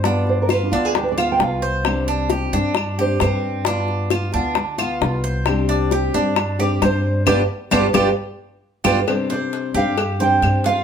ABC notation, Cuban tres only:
X:1
M:4/4
L:1/8
Q:1/4=133
K:Gphr
V:1 name="Cuban tres"
D2 F D2 F2 c- | c D G D2 G C2 | D2 F D2 F2 c- | c D G D2 G c2 |
[DFG] z [DFG] [DFG] z3 [DFG] | z c2 G2 c2 F |]